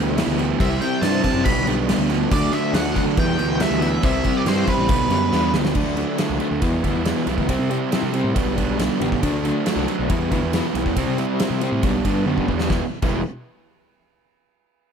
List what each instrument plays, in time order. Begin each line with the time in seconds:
Already playing: picked electric bass D2, overdriven electric guitar E2 B2 E3 G3 B3 E4, string machine E4 G4 B4
0.17 overdriven electric guitar E2 B2 E3 G3 B3 E4, snare, crash
0.27 picked electric bass D2
0.38 overdriven electric guitar E2 B2 E3 G3 B3 E4, crash
0.60 picked electric bass C2, overdriven electric guitar C3 G3 C4 E4, string machine E4 G4 C5, lead electric guitar E5, kick, crash
0.81 overdriven electric guitar C3 G3 C4 E4, lead electric guitar G5, crash
1.01 picked electric bass G2, overdriven electric guitar C3 G3 C4 E4, lead electric guitar A5, snare, crash
1.23 overdriven electric guitar C3 G3 C4 E4, lead electric guitar A5, kick, crash
1.34 picked electric bass F#2
1.44 picked electric bass B1, overdriven electric guitar G2 B2 D3 G3 B3 D4, string machine D4 G4 B4, lead electric guitar B5, kick, crash
1.66 picked electric bass B1, overdriven electric guitar G2 B2 D3 G3 B3 D4, crash
1.88 overdriven electric guitar G2 B2 D3 G3 B3 D4, snare, crash
1.98 picked electric bass D2
2.10 overdriven electric guitar G2 B2 D3 G3 B3 D4, crash
2.31 picked electric bass D2, overdriven electric guitar D3 F#3 A3 D4, string machine D4 F#4 A4, lead electric guitar D5, kick, crash
2.52 overdriven electric guitar D3 F#3 A3 D4, lead electric guitar E5, crash
2.73 picked electric bass D2, overdriven electric guitar D3 F#3 A3 D4, lead electric guitar F#5, snare, crash
2.96 overdriven electric guitar D3 F#3 A3 D4, lead electric guitar F#5, kick, crash
3.06 picked electric bass D3
3.17 overdriven electric guitar E2 B2 E3 G3 B3 E4, picked electric bass E2, string machine E4 G4 B4, lead electric guitar G5, kick, crash
3.38 picked electric bass D2, overdriven electric guitar E2 B2 E3 G3 B3 E4, crash
3.60 overdriven electric guitar E2 B2 E3 G3 B3 E4, lead electric guitar E5, snare, crash
3.71 picked electric bass D2
3.82 overdriven electric guitar E2 B2 E3 G3 B3 E4, crash
4.02 picked electric bass C2, overdriven electric guitar C3 G3 C4 E4, string machine E4 G4 C5, lead electric guitar E5, kick, crash
4.24 overdriven electric guitar C3 G3 C4 E4, kick, crash
4.37 lead electric guitar D5
4.46 picked electric bass G2, overdriven electric guitar C3 G3 C4 E4, lead electric guitar C5, snare, crash
4.67 overdriven electric guitar C3 G3 C4 E4, lead electric guitar B4, kick, crash
4.78 picked electric bass A1
4.89 picked electric bass B1, overdriven electric guitar G2 B2 D3 G3 B3 D4, string machine D4 G4 B4, kick, crash
5.10 picked electric bass F#2, overdriven electric guitar G2 B2 D3 G3 B3 D4, crash
5.32 picked electric bass E2, overdriven electric guitar G2 B2 D3 G3 B3 D4, snare
5.53 picked electric bass D2, overdriven electric guitar G2 B2 D3 G3 B3 D4, snare
5.65 snare
5.75 picked electric bass D2, overdriven electric guitar D3 F#3 A3 D4, kick, crash
5.86 picked electric bass D2
5.97 overdriven electric guitar D3 F#3 A3 D4, ride
6.18 overdriven electric guitar D3 F#3 A3 D4, snare, ride
6.30 picked electric bass C2
6.40 overdriven electric guitar D3 F#3 A3 D4, ride
6.51 picked electric bass D2
6.61 overdriven electric guitar E2 B2 E3 G3 B3 E4, picked electric bass E2, kick, ride
6.83 picked electric bass D2, overdriven electric guitar E2 B2 E3 G3 B3 E4, kick, ride
6.93 picked electric bass E2
7.05 overdriven electric guitar E2 B2 E3 G3 B3 E4, snare, ride
7.27 picked electric bass B1, overdriven electric guitar E2 B2 E3 G3 B3 E4, snare, ride
7.38 picked electric bass D2, kick
7.48 picked electric bass C2, overdriven electric guitar C3 G3 C4 E4, kick, ride
7.59 picked electric bass C3
7.70 overdriven electric guitar C3 G3 C4 E4, ride
7.92 overdriven electric guitar C3 G3 C4 E4, snare, ride
8.03 picked electric bass C3
8.14 overdriven electric guitar C3 G3 C4 E4, ride
8.24 picked electric bass A2
8.34 picked electric bass B1, overdriven electric guitar G2 B2 D3 G3 B3 D4, kick, ride
8.56 overdriven electric guitar G2 B2 D3 G3 B3 D4, kick, ride
8.78 overdriven electric guitar G2 B2 D3 G3 B3 D4, snare, ride
9.00 picked electric bass A1, overdriven electric guitar G2 B2 D3 G3 B3 D4, ride
9.12 kick
9.23 picked electric bass D2, overdriven electric guitar D3 F#3 A3 D4, kick, ride
9.33 picked electric bass D2
9.45 overdriven electric guitar D3 F#3 A3 D4, ride
9.66 overdriven electric guitar D3 F#3 A3 D4, snare, ride
9.76 picked electric bass C2
9.88 overdriven electric guitar D3 F#3 A3 D4, ride
9.99 picked electric bass B1
10.09 overdriven electric guitar E2 B2 E3 G3 B3 E4, picked electric bass E2, kick, ride
10.31 picked electric bass D2, overdriven electric guitar E2 B2 E3 G3 B3 E4, kick, ride
10.42 picked electric bass E2
10.53 overdriven electric guitar E2 B2 E3 G3 B3 E4, snare, ride
10.74 picked electric bass B1, overdriven electric guitar E2 B2 E3 G3 B3 E4, ride
10.86 picked electric bass E2, kick
10.96 picked electric bass C2, overdriven electric guitar C3 G3 C4 E4, kick, ride
11.07 picked electric bass C3
11.18 overdriven electric guitar C3 G3 C4 E4, ride
11.40 overdriven electric guitar C3 G3 C4 E4, snare, ride
11.50 picked electric bass C3
11.61 overdriven electric guitar C3 G3 C4 E4, ride
11.72 picked electric bass A2
11.83 picked electric bass B1, overdriven electric guitar G2 B2 D3 G3 B3 D4, kick, ride
12.05 picked electric bass G2, overdriven electric guitar G2 B2 D3 G3 B3 D4, kick, ride
12.26 picked electric bass F#2, overdriven electric guitar G2 B2 D3 G3 B3 D4, high tom
12.38 kick
12.48 picked electric bass E2, overdriven electric guitar G2 B2 D3 G3 B3 D4, kick
12.60 snare
12.69 picked electric bass E1, overdriven electric guitar E2 B2 E3 G3 B3 E4, kick, snare
13.02 picked electric bass E1, overdriven electric guitar E2 B2 E3 G3 B3 E4, kick, crash